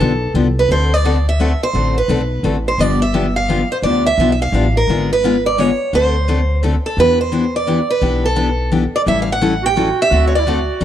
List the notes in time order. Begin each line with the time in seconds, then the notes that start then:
Already playing: A4
0.00 B1 D3 F3 B3 D4 G4
0.34 C2 D3 F3 B3 D4 G4
0.59 B4
0.69 D2 D3 A3 C4 F#4 A4 C5
0.94 D5
1.05 D3 A3 C4 F#4 A4
1.29 E5
1.40 D3 A3 C4 F#4 A4
1.63 C5
1.73 A1 D3 A3 C4 F#4 A4
1.98 B4
2.08 B1 D3 A3 C4 F#4 A4
2.43 A1 D3 A3 C4 F#4 A4
2.68 C5
2.78 G1 D3 F3 B3 D4 G4 D5
3.02 E5
3.14 D3 F3 B3 D4 G4
3.36 F5
3.49 D3 F3 B3 D4 G4
3.72 C5
3.82 D2 D3 F3 B3 D4 G4 D5
4.06 E5
4.18 B1 D3 F3 B3 D4 G4
4.32 E5
4.42 F5
4.52 A1 D3 F3 B3 D4 G4
4.77 A#4
4.88 G#1 D3 G#3 B3 F4 G#4
5.13 B4
5.24 D3 G#3 B3 F4 G#4
5.46 D5
5.58 D3 G#3 B3 F4 G#4 C#5
5.93 D2 D3 A3 C4 F#4 A4 C5
6.28 D3 A3 C4 F#4 A4
6.63 D3 A3 C4 F#4 A4
6.86 A4
6.97 E2 E3 B3 D4 G4 B4
7.21 C5
7.32 E3 B3 D4 G4
7.56 D5
7.67 E3 B3 D4 G4
7.90 B4
8.02 B1 E3 B3 D4 G4
8.26 A4
8.36 E3 B3 D4 G4
8.72 E3 B3 D4 G4
8.96 D5
9.06 A1 E3 G3 C#4 E4 A4 E5
9.22 F5
9.32 F#5
9.41 E3 G3 C#4 E4 A4
9.63 F#4 G5
9.70 G4
9.76 E3 G3 C#4 E4 F#4 A4
10.02 G4 E5
10.10 D2 D3 A3 C4 F#4 A4
10.28 C#5
10.35 E4 D5
10.46 D3 A3 C4 F#4 A4
10.80 A1 E3 G3 C#4 E4